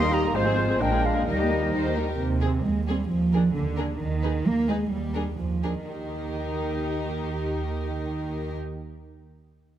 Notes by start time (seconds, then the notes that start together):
Already playing: D#2 G3 A#3 D#4 G4 D#5 C6
0.01 D#4 A#4
0.11 A#3 G4 D#5 A#5
0.23 D#4 A#4
0.33 G#1 G#2 F3 G#3 C4 F4 C5
0.45 C4 G#4
0.57 G#3 F4 C5
0.68 C4 G#4
0.78 A#1 A#2 G#3 D4 A#4 G5
0.82 G#3
0.91 A#3 F4 G#4
1.02 G#3 D4 A#4 F5
1.15 A#3 F4 G#4
1.26 D#2 D#3 G3 D#4 A#4 D#5
1.30 G3
1.37 G4
1.41 A#3
1.49 G3 D#4 A#4
1.60 A#3 G4
1.71 D#2 D#3 D#4 C5
1.75 G3
1.85 A#3 G4
1.94 D#4 A#4
1.99 G3
2.08 A#3 G4
2.20 D#2 C3
2.41 C4 G#4
2.65 D#2 G#3
2.87 G3 C4 G#4
3.10 D#2 F3
3.32 D4 G#4 A#4
3.55 D#2 D3
3.76 D4 G#4 A#4
4.00 D#2 D#3
4.22 D#4 G#4 B4
4.45 D#2 A#3
4.69 G#3 D#4 G#4 B4
4.92 D#2 G3
5.15 D4 G#4 A#4
5.38 D#2 F3
5.63 D4 G#4 A#4
5.86 D#2 D#3 D#4 G4 A#4